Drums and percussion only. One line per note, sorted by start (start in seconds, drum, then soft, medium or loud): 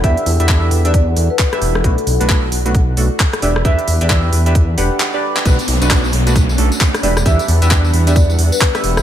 0.04 kick loud
0.04 closed hi-hat medium
0.17 closed hi-hat soft
0.26 open hi-hat loud
0.40 closed hi-hat medium
0.49 kick loud
0.49 clap loud
0.71 open hi-hat loud
0.85 closed hi-hat medium
0.94 kick loud
0.94 closed hi-hat medium
1.17 open hi-hat loud
1.39 kick loud
1.39 clap loud
1.39 open hi-hat medium
1.53 cross-stick medium
1.53 closed hi-hat medium
1.62 open hi-hat loud
1.75 cross-stick medium
1.84 kick loud
1.84 closed hi-hat medium
1.98 closed hi-hat soft
2.07 open hi-hat loud
2.21 closed hi-hat medium
2.29 kick loud
2.29 clap loud
2.52 open hi-hat loud
2.66 closed hi-hat medium
2.75 kick loud
2.75 closed hi-hat medium
2.97 open hi-hat loud
3.20 kick loud
3.20 clap loud
3.33 cross-stick medium
3.33 closed hi-hat medium
3.42 open hi-hat loud
3.56 cross-stick medium
3.65 kick loud
3.65 closed hi-hat medium
3.79 closed hi-hat soft
3.88 open hi-hat loud
4.01 closed hi-hat medium
4.10 kick loud
4.10 clap loud
4.33 open hi-hat loud
4.46 closed hi-hat medium
4.55 kick loud
4.55 closed hi-hat medium
4.78 open hi-hat loud
5.00 clap loud
5.36 clap medium
5.45 kick loud
5.45 closed hi-hat medium
5.45 tambourine medium
5.59 closed hi-hat soft
5.59 tambourine soft
5.68 open hi-hat loud
5.82 closed hi-hat medium
5.82 tambourine medium
5.91 kick loud
5.91 clap loud
5.91 tambourine soft
6.04 tambourine soft
6.13 open hi-hat loud
6.27 closed hi-hat medium
6.27 tambourine medium
6.36 kick loud
6.36 closed hi-hat medium
6.36 tambourine soft
6.49 tambourine soft
6.58 open hi-hat loud
6.72 tambourine medium
6.81 kick loud
6.81 clap loud
6.81 tambourine medium
6.94 cross-stick medium
6.94 closed hi-hat medium
6.94 tambourine soft
7.03 open hi-hat loud
7.17 cross-stick medium
7.17 tambourine medium
7.26 kick loud
7.26 closed hi-hat medium
7.26 tambourine soft
7.39 closed hi-hat soft
7.39 tambourine soft
7.48 open hi-hat loud
7.62 closed hi-hat medium
7.62 tambourine medium
7.71 kick loud
7.71 clap loud
7.71 tambourine soft
7.85 tambourine soft
7.94 open hi-hat loud
8.07 closed hi-hat medium
8.07 tambourine medium
8.16 kick loud
8.16 closed hi-hat medium
8.16 tambourine soft
8.30 tambourine soft
8.39 open hi-hat loud
8.52 tambourine medium
8.61 kick loud
8.61 clap loud
8.75 cross-stick medium
8.75 closed hi-hat medium
8.75 tambourine soft
8.84 open hi-hat loud
8.97 cross-stick medium
8.97 tambourine medium